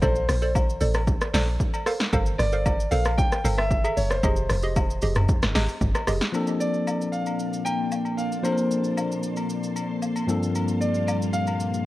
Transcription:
0.02 log drum bass A#1, synth pluck A4 C5 D5, grand piano C5, kick, high agogo, shaker
0.16 shaker
0.29 log drum bass A#1, cross-stick, open hi-hat, shaker
0.42 synth pluck A4 C5 D5, shaker
0.55 kick, high agogo, low woodblock, shaker
0.70 shaker
0.81 log drum bass A1, synth pluck A4 C5 D5, open hi-hat, shaker
0.94 cross-stick, high agogo, shaker
1.08 kick, shaker
1.21 cross-stick, shaker
1.34 log drum bass A#1, synth pluck A4 C5 D5, snare, open hi-hat, high agogo, shaker
1.60 kick, shaker
1.74 high agogo, shaker
1.86 synth pluck A4 A#4 C5 F5, cross-stick, open hi-hat, shaker
2.00 snare, shaker
2.13 log drum bass G1, synth pluck A4 A#4 C5 F5, kick, high agogo, shaker
2.26 shaker
2.38 log drum bass G1, grand piano D5, cross-stick, open hi-hat, shaker
2.52 synth pluck A4 A#4 C5 F5, shaker
2.66 kick, high agogo, low woodblock, shaker
2.80 shaker
2.91 log drum bass A#1, synth pluck A4 A#4 C5 F5, grand piano F5, open hi-hat, shaker
3.05 cross-stick, high agogo, shaker
3.18 grand piano G5, kick, shaker
3.32 cross-stick, shaker
3.44 log drum bass G1, synth pluck A4 A#4 C5 F5, open hi-hat, high agogo, shaker
3.58 grand piano E5, cross-stick
3.71 kick, shaker
3.84 synth pluck G#4 A4 E5, high agogo, shaker
3.97 log drum bass F#1, grand piano C#5, open hi-hat, shaker
4.10 grand piano C5, cross-stick, shaker
4.23 log drum bass F1, synth pluck G4 G#4 D#5, kick, high agogo, shaker
4.36 shaker
4.50 log drum bass F1, cross-stick, open hi-hat, shaker
4.62 synth pluck G4 G#4 D#5, shaker
4.76 kick, high agogo, low woodblock, shaker
4.90 shaker
5.02 log drum bass F1, synth pluck G4 G#4 D#5, open hi-hat, shaker
5.15 cross-stick, mid tom, high agogo, shaker
5.29 kick, shaker
5.42 log drum bass G1, cross-stick, snare, shaker
5.55 log drum bass G#1, synth pluck G4 G#4 D#5, snare, open hi-hat, high agogo, shaker
5.69 shaker
5.81 log drum bass G1, kick, shaker
5.95 cross-stick, high agogo, shaker
6.07 log drum bass F1, synth pluck G4 G#4 D#5, cross-stick, open hi-hat, shaker
6.21 snare, shaker
6.32 tine electric piano F3 A#3 C4 D4 A4, string machine A#3 D5 A5 C6, high agogo, shaker
6.47 shaker
6.60 grand piano D5, shaker
6.74 shaker
6.87 high agogo, low woodblock, shaker
7.01 shaker
7.12 grand piano F5, shaker
7.26 high agogo, shaker
7.39 shaker
7.53 shaker
7.65 grand piano G5, high agogo, shaker
7.92 low woodblock, shaker
8.05 high agogo, shaker
8.17 grand piano F5, shaker
8.32 shaker
8.43 tine electric piano F3 A#3 C4 D4 A4, grand piano C5, high agogo, shaker
8.52 tine electric piano A#4
8.58 shaker
8.71 shaker
8.84 shaker
8.97 high agogo, low woodblock, shaker
9.12 shaker
9.23 shaker
9.37 high agogo, shaker
9.50 shaker
9.64 shaker
9.76 high agogo, shaker
10.02 low woodblock, shaker
10.16 high agogo, shaker
10.27 tine electric piano G2 F3 A#3 C4 D4 A4, string machine G3 A#3 F5, shaker
10.43 shaker
10.55 high agogo, shaker
10.68 shaker
10.81 grand piano D5, shaker
10.94 shaker
11.07 grand piano D5, high agogo, low woodblock, shaker
11.22 shaker
11.33 grand piano F5, shaker
11.47 high agogo, shaker
11.60 shaker
11.74 shaker

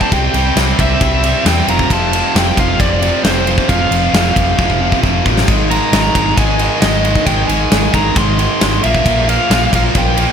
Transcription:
Already playing: distorted electric guitar C3 G3 C4
0.01 lead electric guitar A5, kick
0.11 fingered electric bass C2, distorted electric guitar C3 G3 C4, lead electric guitar G5, kick, ride
0.33 fingered electric bass C2, distorted electric guitar C3 G3 C4, ride
0.56 fingered electric bass C2, distorted electric guitar C3 G3 C4, snare, ride
0.78 fingered electric bass C2, distorted electric guitar C3 G3 C4, lead electric guitar E5, kick, ride
1.01 fingered electric bass C2, distorted electric guitar C3 G3 C4, lead electric guitar E5, kick, ride
1.23 distorted electric guitar C3 G3 C4, ride
1.45 fingered electric bass E2, distorted electric guitar C3 G3 C4, lead electric guitar G5, snare, ride
1.67 fingered electric bass F1, distorted electric guitar F2 C3 F3, lead electric guitar A#5, ride
1.79 kick
1.89 fingered electric bass F1, distorted electric guitar F2 C3 F3, kick, ride
1.93 lead electric guitar A5
2.12 distorted electric guitar F2 C3 F3, ride
2.34 fingered electric bass F1, distorted electric guitar F2 C3 F3, lead electric guitar G5, snare, ride
2.57 fingered electric bass F1, distorted electric guitar F2 C3 F3, lead electric guitar F5, kick, ride
2.79 fingered electric bass F1, distorted electric guitar F2 C3 F3, lead electric guitar D5, kick, ride
3.01 distorted electric guitar F2 C3 F3, ride
3.24 fingered electric bass F1, distorted electric guitar F2 C3 F3, lead electric guitar C5, snare, ride
3.47 distorted electric guitar F2 C3 F3, ride
3.58 kick
3.69 fingered electric bass F1, distorted electric guitar F2 C3 F3, lead electric guitar F5, kick, ride
3.91 fingered electric bass F1, distorted electric guitar F2 C3 F3, ride
4.13 fingered electric bass F1, distorted electric guitar F2 C3 F3, snare, ride
4.35 fingered electric bass F1, distorted electric guitar F2 C3 F3, kick, ride
4.58 fingered electric bass F1, distorted electric guitar F2 C3 F3, kick
4.70 kick
4.81 distorted electric guitar F2 C3 F3
4.92 kick
5.03 fingered electric bass F1, distorted electric guitar F2 C3 F3, kick
5.25 fingered electric bass A1, distorted electric guitar F2 C3 F3, kick
5.37 snare
5.48 fingered electric bass G#1, distorted electric guitar G#2 D#3 G#3, kick, crash
5.70 distorted electric guitar G#2 D#3 G#3, lead electric guitar A#5, ride
5.92 fingered electric bass G#1, distorted electric guitar G#2 D#3 G#3, snare, ride
6.15 fingered electric bass G#1, distorted electric guitar G#2 D#3 G#3, kick, ride
6.37 fingered electric bass G#1, distorted electric guitar G#2 D#3 G#3, lead electric guitar G#5, kick, ride
6.59 distorted electric guitar G#2 D#3 G#3, ride
6.80 fingered electric bass G#1, distorted electric guitar G#2 D#3 G#3, lead electric guitar D#5, snare, ride
7.04 distorted electric guitar G#2 D#3 G#3, ride
7.15 kick
7.26 fingered electric bass G#1, distorted electric guitar G#2 D#3 G#3, lead electric guitar G5, kick, ride
7.48 fingered electric bass G#1, distorted electric guitar G#2 D#3 G#3, lead electric guitar G#5, ride
7.70 fingered electric bass G#1, distorted electric guitar G#2 D#3 G#3, snare, ride
7.93 fingered electric bass G#1, distorted electric guitar G#2 D#3 G#3, lead electric guitar A#5, kick, ride
8.16 fingered electric bass G#1, distorted electric guitar G#2 D#3 G#3, lead electric guitar C6, kick, ride
8.38 distorted electric guitar G#2 D#3 G#3, ride
8.60 fingered electric bass G#1, distorted electric guitar G#2 D#3 G#3, snare, ride
8.82 fingered electric bass A#1, distorted electric guitar A#2 F3 A#3, lead electric guitar E5, ride
8.95 kick
9.05 fingered electric bass A#1, distorted electric guitar A#2 F3 A#3, kick, ride
9.27 distorted electric guitar A#2 F3 A#3, lead electric guitar F5, ride
9.50 fingered electric bass A#1, distorted electric guitar A#2 F3 A#3, snare, ride
9.73 fingered electric bass A#1, distorted electric guitar A#2 F3 A#3, lead electric guitar F5, kick, ride
9.95 fingered electric bass A#1, distorted electric guitar A#2 F3 A#3, lead electric guitar G5, kick, ride
10.17 distorted electric guitar A#2 F3 A#3, ride

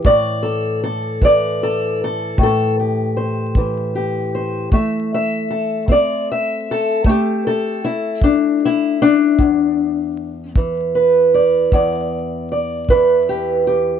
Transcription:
Already playing: steel-string acoustic guitar E3
0.04 steel-string acoustic guitar A2 D5, kick
0.43 steel-string acoustic guitar A4
0.83 steel-string acoustic guitar A4
1.22 steel-string acoustic guitar E3 D5, kick
1.63 steel-string acoustic guitar A4
2.04 steel-string acoustic guitar A4
2.38 steel-string acoustic guitar A2, kick
2.43 steel-string acoustic guitar A4
2.80 steel-string acoustic guitar G4
3.17 steel-string acoustic guitar C5
3.55 steel-string acoustic guitar E3, kick
3.95 steel-string acoustic guitar G4
4.35 steel-string acoustic guitar C5
4.72 steel-string acoustic guitar A3 E5, kick
5.14 steel-string acoustic guitar E5
5.50 steel-string acoustic guitar A4
5.88 steel-string acoustic guitar C4 D5, kick
6.31 steel-string acoustic guitar E5
6.71 steel-string acoustic guitar A4
7.04 steel-string acoustic guitar A3, kick
7.09 steel-string acoustic guitar G4
7.47 steel-string acoustic guitar A4
7.84 steel-string acoustic guitar E4
8.21 steel-string acoustic guitar D4, kick
8.65 steel-string acoustic guitar E4
9.02 steel-string acoustic guitar D4
9.38 steel-string acoustic guitar E2, kick
10.55 steel-string acoustic guitar E3, kick
10.95 steel-string acoustic guitar B4
11.34 steel-string acoustic guitar D5
11.72 steel-string acoustic guitar E2 D5, kick
12.52 steel-string acoustic guitar D5
12.89 steel-string acoustic guitar E3 B4, kick
13.29 steel-string acoustic guitar G4
13.67 steel-string acoustic guitar G4

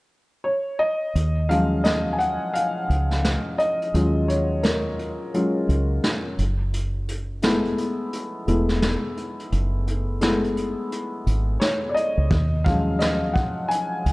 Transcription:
0.44 felt piano C#5
0.79 felt piano D#5
1.15 fingered electric bass D#2, closed hi-hat
1.49 felt piano F3 F#3 G#3 C#4 F5, closed hi-hat
1.84 felt piano D#5, snare, closed hi-hat
2.13 felt piano G#5
2.19 felt piano F#5, closed hi-hat
2.54 felt piano F5, closed hi-hat
2.90 fingered electric bass C#2, closed hi-hat
3.11 snare
3.25 snare, closed hi-hat
3.58 felt piano D#5, closed hi-hat
3.82 closed hi-hat
3.94 fingered electric bass D#2, felt piano F#3 G#3 C#4 F4, closed hi-hat
4.28 felt piano C#5, closed hi-hat
4.63 felt piano A#4, snare, closed hi-hat
4.99 closed hi-hat
5.34 felt piano F#3 G#3 C#4 F4, closed hi-hat
5.69 fingered electric bass C#2, closed hi-hat
6.04 snare, closed hi-hat
6.38 fingered electric bass F#1, closed hi-hat
6.73 closed hi-hat
7.08 closed hi-hat
7.42 felt piano G#3 A3 B3 E4, snare, closed hi-hat
7.65 closed hi-hat
7.78 closed hi-hat
8.13 closed hi-hat
8.47 fingered electric bass E1, felt piano G#3 A3 B3 E4, closed hi-hat
8.69 snare
8.82 snare, closed hi-hat
9.17 closed hi-hat
9.39 closed hi-hat
9.52 fingered electric bass F#1, closed hi-hat
9.87 closed hi-hat
10.21 felt piano G#3 A3 B3 E4, snare, closed hi-hat
10.44 closed hi-hat
10.57 closed hi-hat
10.92 closed hi-hat
11.26 fingered electric bass G#1, closed hi-hat
11.60 felt piano C#5, snare, closed hi-hat
11.89 felt piano D5
11.95 felt piano D#5, closed hi-hat
12.17 fingered electric bass C#2
12.31 fingered electric bass D#2, kick, closed hi-hat
12.64 felt piano F3 F#3 G#3 C#4 F5, kick, closed hi-hat
12.99 felt piano D#5, snare, closed hi-hat
13.33 felt piano F#5, kick, closed hi-hat
13.68 felt piano G#5, closed hi-hat
14.06 fingered electric bass C#2, closed hi-hat

